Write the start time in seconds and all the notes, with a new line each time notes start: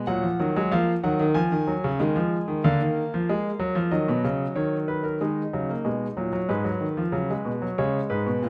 0.07 A#2 F#3 F#5
0.23 F3
0.39 D#3 F#3
0.56 F#3 G#3
0.71 F3 A#3 F5
1.04 D#3 F#3 F#5
1.19 D#3
1.34 F3 G#5
1.52 D#3
1.67 F#3
1.84 C#3
1.99 D#3 G#3
2.16 F3
2.48 D#3
2.64 D3 A#3 F5
2.81 D#3
3.14 F3
3.29 G#3
3.59 F#3
3.75 F3
3.91 D#3 F#3 D#5
4.08 B2
4.24 C#3
4.56 D#3 C#5
4.88 B4
5.04 A#4
5.21 D#3 G#3 D#4
5.53 C#3 F#3
5.69 A#3
5.85 B2 G#3
6.17 A#2 F#3
6.33 F#3
6.49 G#2 G#3 B4
6.64 F#3
6.80 D#3
6.97 F3
7.12 C#3 F#3
7.30 G#3
7.45 B2
7.62 F#3
7.78 C#3 G#3 C#5
8.10 G#2 B4
8.27 B2
8.43 A#2